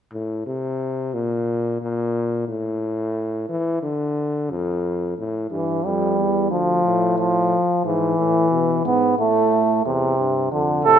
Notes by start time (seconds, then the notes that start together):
0.12 A2
0.46 C3
1.14 A#2
1.82 A#2
2.48 A2
3.49 E3
3.83 D3
4.50 F2
5.18 A2
5.51 G2 E3
5.84 F2 G3
6.18 E2
6.51 D2 F3
6.84 A2
7.18 F3
7.84 G#2 E3
8.18 A2
8.51 B2
8.85 G#2 B3
9.18 A2 A3
9.85 E2 C3
10.18 G2
10.52 F2 D3
10.85 A2 C3 A4